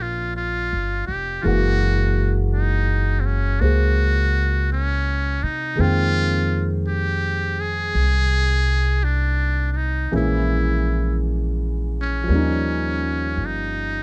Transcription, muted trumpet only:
0.02 0.36 F4 medium
0.36 1.06 F4 medium
1.06 1.43 G4 medium
1.41 1.45 F4 medium
1.41 2.36 F#4 medium
2.53 3.22 D#4 medium
3.20 3.27 C4 soft
3.26 3.62 C#4 medium
3.61 4.70 F#4 medium
4.72 5.45 C#4 medium
5.43 5.82 D#4 medium
5.81 6.71 F4 medium
6.87 7.62 G4 medium
7.61 9.05 G#4 medium
9.04 9.72 D4 medium
9.72 9.78 D4 soft
9.76 10.12 D#4 medium
10.16 11.19 E4 medium
12.01 13.47 C#4 medium
13.46 14.03 D#4 medium

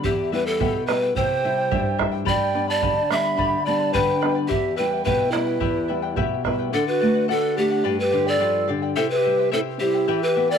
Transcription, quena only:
1.16 1.99 G5 medium
2.28 2.66 G5 medium
2.70 3.13 A5 medium
3.11 3.17 D6 medium
3.16 3.67 B5 medium
3.67 3.96 A5 medium
3.94 4.36 G5 medium
4.50 4.76 E5 medium
4.78 5.04 G5 medium
5.06 5.36 G5 medium
5.34 6.18 B4 medium
5.34 5.39 D5 medium
6.74 6.87 D4 medium
6.88 7.27 F#4 medium
7.30 7.60 D4 medium
7.60 8.00 D4 medium
8.01 8.31 G4 medium
8.01 8.05 A4 medium
8.29 8.70 A4 medium
8.98 9.10 E4 medium
9.12 9.17 A4 medium
9.16 9.50 G4 medium
9.55 9.62 E4 medium
9.83 10.25 E4 medium
10.24 10.29 A4 medium
10.28 10.50 G4 medium
10.51 10.56 B4 medium

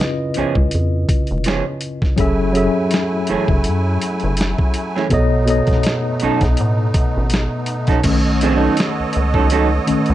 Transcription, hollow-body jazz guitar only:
0.00 muted hollow-body jazz guitar stroke soft
0.36 0.53 F3 medium
0.36 0.54 B3 medium
0.36 0.54 C#4 medium
0.36 0.54 G#4 medium
1.46 1.63 F3 medium
1.46 1.63 B3 medium
1.46 1.64 C#4 medium
1.46 1.64 G#4 medium
2.93 muted hollow-body jazz guitar stroke soft
3.29 3.46 E3 medium
3.29 3.47 A3 medium
3.29 3.47 C#4 medium
3.29 3.47 G#4 medium
4.96 5.07 E3 soft
4.96 5.07 A3 medium
4.96 5.07 C#4 medium
4.96 5.06 G#4 medium
5.85 muted hollow-body jazz guitar stroke soft
6.22 6.39 F#3 medium
6.22 6.39 C#4 medium
6.22 6.40 D#4 medium
6.22 6.40 A4 medium
7.89 8.00 F#3 soft
7.89 8.00 C#4 soft
7.89 7.99 D#4 medium
7.89 7.99 A4 medium
8.42 8.56 F3 medium
8.42 8.57 C4 medium
8.42 8.56 D4 medium
8.42 8.57 G#4 medium
8.56 8.75 F#3 medium
8.56 8.75 C#4 medium
8.56 8.76 D#4 medium
8.56 8.76 A4 medium
9.35 9.46 F#3 medium
9.35 9.46 C#4 medium
9.35 9.46 D#4 medium
9.35 9.46 A4 medium
9.52 9.68 F#3 medium
9.52 9.69 C#4 medium
9.52 9.69 D#4 medium
9.52 9.69 A4 medium

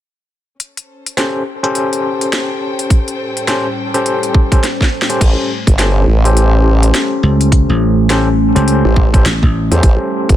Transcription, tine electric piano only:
1.17 1.42 C#4 medium
1.17 1.42 G4 medium
1.17 1.42 A4 medium
1.17 1.42 C5 medium
1.63 3.45 C#4 medium
1.63 3.45 G4 medium
1.63 3.45 A4 medium
1.63 3.45 C5 loud
3.48 3.66 C#4 loud
3.48 3.66 G4 medium
3.48 3.66 A4 medium
3.48 3.66 C5 loud
3.94 4.48 C#4 medium
3.94 4.48 G4 medium
3.94 4.48 A4 medium
3.94 4.48 C5 loud
4.52 4.64 C#4 medium
4.52 4.64 G4 medium
4.52 4.64 A4 medium
4.52 4.64 C5 medium
5.10 5.50 C#4 medium
5.10 5.50 G4 medium
5.10 5.50 A4 medium
5.10 5.50 C5 medium
5.79 6.04 C#4 medium
5.79 6.04 G4 medium
5.79 6.04 A4 medium
5.79 6.04 C5 medium
6.25 8.07 C#4 loud
6.25 8.07 G4 medium
6.25 8.07 A4 medium
6.25 8.07 C5 loud
8.10 8.27 C#4 loud
8.10 8.27 G4 medium
8.10 8.27 A4 medium
8.10 8.28 C5 loud
8.55 9.09 C#4 loud
8.55 9.09 G4 medium
8.55 9.09 A4 medium
8.55 9.09 C5 loud
9.13 9.26 C#4 medium
9.13 9.26 G4 medium
9.13 9.26 A4 medium
9.13 9.26 C5 medium
9.71 10.37 C#4 medium
9.71 10.37 G4 medium
9.71 10.37 A4 medium
9.71 10.37 C5 medium

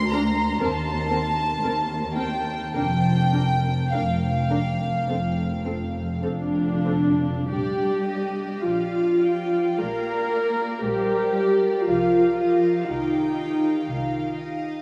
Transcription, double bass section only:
0.00 0.48 D2 medium
0.60 1.50 D#2 medium
1.62 2.61 D#2 medium
2.74 3.79 F1 medium
3.93 4.95 F1 medium
5.09 6.09 F1 medium
6.23 7.35 F1 medium
7.50 8.48 A#1 medium
8.64 9.64 A#1 soft
9.79 10.69 A#1 medium
10.83 11.74 A#1 soft
11.89 12.75 C2 medium
12.89 13.75 C2 medium
13.89 14.75 C2 medium

